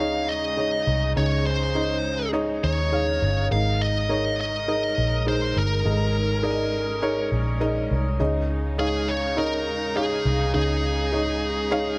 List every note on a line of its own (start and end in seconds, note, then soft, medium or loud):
0.00 0.28 C#2 medium
0.00 1.17 C#3 medium
0.00 3.47 C#3 medium
0.00 1.12 G#3 medium
0.00 0.57 D#4 medium
0.00 5.81 D#4 medium
0.00 0.57 G#4 medium
0.00 0.58 C#5 medium
0.00 3.53 D5 medium
0.00 0.58 D#5 medium
0.00 0.30 F5 loud
0.28 0.83 D#2 medium
0.28 1.12 D#5 medium
0.57 1.12 D#4 medium
0.57 1.13 G#4 medium
0.57 1.13 C#5 medium
0.57 1.13 D#5 medium
0.87 1.14 C2 medium
1.16 2.59 C#2 medium
1.16 2.00 C#3 soft
1.16 3.49 G#3 medium
1.16 1.71 D#4 medium
1.16 1.72 G#4 soft
1.16 1.72 C#5 medium
1.16 1.46 C#5 medium
1.16 1.72 D#5 medium
1.47 2.30 C5 medium
1.75 2.30 C#4 medium
1.75 2.30 D#4 medium
1.75 2.30 G#4 medium
1.75 2.30 D#5 medium
2.33 2.88 D#4 medium
2.33 2.88 G#4 medium
2.33 2.89 C#5 medium
2.33 2.89 D#5 medium
2.63 3.18 D#2 medium
2.63 3.47 C#5 medium
2.92 3.47 D#4 medium
2.92 3.47 G#4 medium
2.92 3.48 C#5 medium
2.92 3.48 F5 medium
3.22 3.49 G1 medium
3.51 4.94 G#1 medium
3.51 4.35 G#2 soft
3.51 10.51 G#3 medium
3.51 4.06 D#4 medium
3.51 4.06 G#4 medium
3.51 8.16 A#4 medium
3.51 4.06 A#4 soft
3.51 4.07 D#5 medium
3.51 3.82 F5 medium
3.81 4.39 D#5 medium
4.09 4.65 D#4 medium
4.09 4.65 G#4 medium
4.09 4.65 A#4 medium
4.09 4.65 C#5 medium
4.41 5.28 D#5 medium
4.68 5.23 D#4 medium
4.68 5.23 G#4 medium
4.68 5.24 A#4 medium
4.68 5.24 D#5 medium
4.98 5.52 A#1 medium
5.26 5.82 D#4 medium
5.26 5.82 G#4 medium
5.26 5.82 A#4 soft
5.26 5.58 C5 medium
5.26 5.82 D#5 medium
5.56 5.83 G1 medium
5.56 7.29 A#4 medium
5.85 7.28 G#1 medium
5.85 6.69 G#2 medium
5.85 8.17 C#4 medium
5.85 6.40 D#4 medium
5.85 6.41 G#4 soft
5.85 5.92 A4 soft
5.85 6.41 D#5 medium
5.92 6.42 A#4 soft
6.43 6.99 D#4 medium
6.43 6.99 G#4 medium
6.43 6.99 A#4 medium
6.43 6.50 D5 medium
6.50 7.02 D#5 medium
7.02 7.58 D#4 medium
7.02 7.58 G#4 medium
7.02 7.58 A#4 medium
7.02 7.58 C#5 loud
7.32 7.86 A#1 medium
7.60 8.16 D#4 medium
7.60 8.16 G#4 medium
7.60 8.16 A#4 medium
7.60 8.17 D#5 medium
7.91 8.18 C2 medium
8.19 9.67 C#2 medium
8.19 9.04 C#3 medium
8.19 11.98 C#3 medium
8.19 8.75 D#4 medium
8.19 11.98 D#4 medium
8.19 8.75 G#4 medium
8.19 8.75 C#5 medium
8.19 8.75 D#5 medium
8.78 9.34 D#4 medium
8.78 9.34 G#4 medium
8.78 9.09 G#4 medium
8.78 9.34 C#5 medium
8.78 9.34 F5 medium
9.08 9.38 C#5 medium
9.36 9.92 D#4 medium
9.36 9.92 G#4 medium
9.36 9.96 A#4 loud
9.36 9.92 C#5 medium
9.36 9.92 D#5 medium
9.67 10.21 D#2 medium
9.95 10.51 D#4 medium
9.95 10.51 G#4 medium
9.95 10.51 C#5 medium
9.95 10.51 F5 medium
10.25 10.52 C2 medium
10.54 11.97 C#2 medium
10.54 11.38 C#3 soft
10.54 11.98 G#3 medium
10.54 11.09 D#4 medium
10.54 11.09 G#4 medium
10.54 11.98 G#4 medium
10.54 11.10 C#5 medium
10.54 11.10 D#5 medium
11.12 11.68 D#4 medium
11.12 11.68 G#4 medium
11.12 11.68 C#5 medium
11.12 11.68 D#5 medium
11.71 11.98 D#4 medium
11.71 11.98 G#4 medium
11.71 11.98 C#5 medium
11.71 11.98 F5 loud